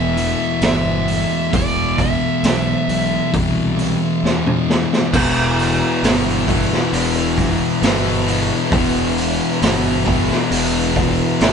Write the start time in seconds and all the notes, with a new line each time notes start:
Already playing: E1 E2 B2 E3 A3 E4 E5
0.17 E2 B2 E3, open hi-hat
0.61 G1 E2 B2 E3 E5, snare, open hi-hat
1.08 open hi-hat
1.51 E1 E2 B2 E3, kick, open hi-hat
1.55 D5
1.98 E5, kick, open hi-hat
2.43 B1, snare, open hi-hat
2.88 B1, open hi-hat
3.32 C2 E2 B2 E3, kick, open hi-hat
3.76 E2 B2 E3, open hi-hat
4.22 E2 B2 E3, snare
4.46 mid tom
4.70 snare
4.93 snare
5.12 E1 E2 B2 E3 B3 E4, kick, crash
5.59 open hi-hat
6.02 G1 E2 B2 E3, snare, open hi-hat
6.48 E2 B2 E3, kick, open hi-hat
6.72 snare
6.92 E1 E2 B2 E3, open hi-hat
7.38 kick, snare, open hi-hat
7.81 G1 E2 B2 E3, snare, open hi-hat
8.27 E2 B2 E3, open hi-hat
8.70 E1 E2 B2 E3, kick, open hi-hat
8.75 E3
9.17 open hi-hat
9.61 G1 E2 B2 E3, snare, open hi-hat
10.05 E2 B2 E3, kick, open hi-hat
10.30 snare
10.51 E1 E2 B2 E3, open hi-hat
10.96 kick, snare, open hi-hat
11.41 G1 E2 B2 E3, snare, open hi-hat